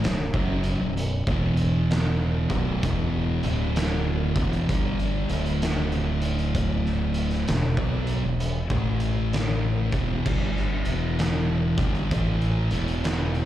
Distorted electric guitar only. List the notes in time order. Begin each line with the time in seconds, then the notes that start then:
0.04 B1 F#2
0.34 F#2 C#3 F#3
0.81 B1 F#2
1.27 E2 B2 E3
2.50 B1 F#2 B2
2.84 E2 B2 E3
3.44 D2 A2 D3
4.37 E2 B2 E3
4.70 G2 D3 G3
5.29 D2 A2 D3
7.48 E2 B2
7.78 B2 F#3 B3
8.24 E2 B2
8.71 A2 E3 A3
9.93 E2 B2 E3
10.26 G2 D3 G3
10.85 E2 B2 E3
11.78 G2 D3 G3
12.12 A2 E3 A3
12.71 E2 B2 E3